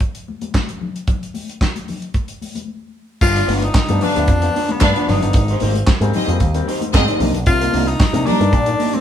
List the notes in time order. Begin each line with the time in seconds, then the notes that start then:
0.00 kick, closed hi-hat
0.15 closed hi-hat
0.28 muted conga, high conga
0.41 closed hi-hat, high conga
0.54 kick, snare, clap, muted conga, high conga
0.69 closed hi-hat
0.81 muted conga, low conga
0.96 closed hi-hat
1.07 kick, closed hi-hat, muted conga, low conga
1.23 closed hi-hat
1.34 open hi-hat, muted conga, high conga
1.49 closed hi-hat
1.61 kick, snare, clap
1.76 closed hi-hat, high conga
1.88 open hi-hat, muted conga, low conga
2.02 closed hi-hat
2.14 kick, closed hi-hat, muted conga
2.28 closed hi-hat
2.42 open hi-hat, high conga
2.55 closed hi-hat, high conga
3.21 G1 G2 D3 F4, muted clean electric guitar stroke, kick, crash, muted conga
3.36 D4 F4 D5, closed hi-hat
3.48 G1 B3 D4 F4 B4, open hi-hat, muted conga, high conga
3.56 F4
3.62 D#4, muted clean electric guitar stroke, closed hi-hat
3.74 muted picked electric bass stroke, kick, snare, clap
3.89 G2 F3 B3 D4, muted clean electric guitar stroke, closed hi-hat, high conga
4.01 G2 D3 D4 F4 B4 F5, open hi-hat, muted conga, low conga
4.15 D2 F3 B3 D4, muted clean electric guitar stroke, closed hi-hat
4.28 F2, kick, closed hi-hat
4.41 F3 B3 D4, muted clean electric guitar stroke, closed hi-hat
4.55 D4 F4 B4, open hi-hat, muted conga
4.69 G2 D3 B3, muted clean electric guitar stroke, closed hi-hat, high conga
4.80 G2 D4 B4 F5, muted clean electric guitar stroke, kick, snare, clap, muted conga, high conga
4.95 F3 B3 D4 F4 B4, closed hi-hat
5.08 G1 G2 D3 D4 D#4 F4 D5, snare, open hi-hat, muted conga, low conga
5.22 G1 F3 B3 D4, muted clean electric guitar stroke, closed hi-hat
5.33 G#1 G#2 D#3, muted clean electric guitar stroke, kick, closed hi-hat, muted conga
5.48 D#4 G4 C5, closed hi-hat
5.60 G#1 A#3 C4 D#4 G4 C5, open hi-hat, muted conga, high conga
5.75 muted clean electric guitar stroke, closed hi-hat
5.87 muted picked electric bass stroke, kick, snare, clap
6.01 G#2 G3 A#3 C4, muted clean electric guitar stroke, closed hi-hat, high conga
6.13 G#2 D#3 C4 D#4 G4 G#4 C5 D#5, open hi-hat, muted conga, low conga
6.28 F2 G3 A#3 C4, muted clean electric guitar stroke, closed hi-hat
6.40 D#2, kick, closed hi-hat, muted conga
6.54 G3 A#3 C4, muted clean electric guitar stroke, closed hi-hat
6.67 D#4 G4 C5, open hi-hat
6.81 G#2 D#3, muted clean electric guitar stroke, closed hi-hat, high conga
6.93 G#2 A#3 C4 G#4 D#5, kick, snare, clap, high conga
7.07 G#2 D#3 D#4 G4 D5, closed hi-hat
7.19 C2 D#3 A#3 D4 D#4 A#4, open hi-hat, low conga
7.34 B1, muted clean electric guitar stroke, closed hi-hat
7.46 C2 C3 F4, muted clean electric guitar stroke, kick, closed hi-hat
7.60 A#3 D#4 A#4, closed hi-hat
7.71 C2 A#3 D4 D#4 G4, open hi-hat, muted conga, high conga
7.87 D#4, muted clean electric guitar stroke, closed hi-hat
8.00 muted picked electric bass stroke, kick, snare, clap, muted conga
8.12 C3 D#3 A#3 D4, muted clean electric guitar stroke, closed hi-hat, high conga
8.26 C3 G3 A#3 D4 D#4 G4 A#4, open hi-hat, muted conga, low conga
8.40 G2 D#3 A#3 D4, muted clean electric guitar stroke, closed hi-hat
8.53 A#2, kick, closed hi-hat, muted conga
8.66 D#3 A#3 D4, muted clean electric guitar stroke, closed hi-hat
8.79 A#3 D#4 G4, open hi-hat, muted conga
8.93 C3 C4, muted clean electric guitar stroke, closed hi-hat, high conga